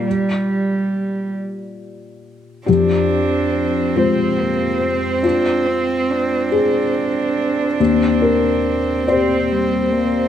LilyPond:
<<
  \new Staff \with { instrumentName = "Felt piano" } { \time 6/8 \key f \dorian \tempo 4. = 47 << { r2. | g'2. | f'4. aes'4. | r8 bes'4 r4. | } \\ { <f' g' d''>2. | f,4. <aes f' c''>4.~ | <aes f' c''>2. | ees,4. <g' c'' d''>4. | } >> }
  \new Staff \with { instrumentName = "Cello" } { \time 6/8 \key f \dorian g4. r4. | d'4. c'8 bes8 c'8 | d'8 c'8 d'2~ | d'4. c'8 g8 bes8 | }
  \new Staff \with { instrumentName = "Viola" } { \time 6/8 \key f \dorian r2. | c'2.~ | c'2. | c'2. | }
>>